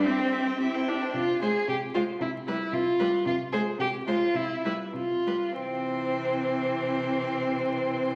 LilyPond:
<<
  \new Staff \with { instrumentName = "Violin" } { \time 2/4 \key c \major \tempo 4 = 108 e''16 g''16 e''16 g''16 e''16 g''16 e''16 g''16 | r8 c''8 r8 c''8 | r8 b'8 r8 b'8 | r8 c''8 r8 c''8 |
r8 b'8 r8 b'8 | c''2~ | c''2 | }
  \new Staff \with { instrumentName = "Violin" } { \time 2/4 \key c \major g'16 c''16 g'16 c''16 g'16 c''16 g'16 c''16 | f'8 aes'8 g'8 f'8 | e'8 e'8 f'4 | f'8 aes'8 g'8 f'8 |
e'8 e'8 f'4 | c'2~ | c'2 | }
  \new Staff \with { instrumentName = "Viola" } { \clef bass \time 2/4 \key c \major c'4 e'8 d'8 | r8 aes8 r8 aes8 | r8 g8 r8 g8 | r8 aes8 r8 aes8 |
r8 g8 r8 g8 | e2~ | e2 | }
  \new Staff \with { instrumentName = "Cello" } { \clef bass \time 2/4 \key c \major c'4. r8 | c4 c4 | c4 c4 | c4 c4 |
c4 c4 | c2~ | c2 | }
>>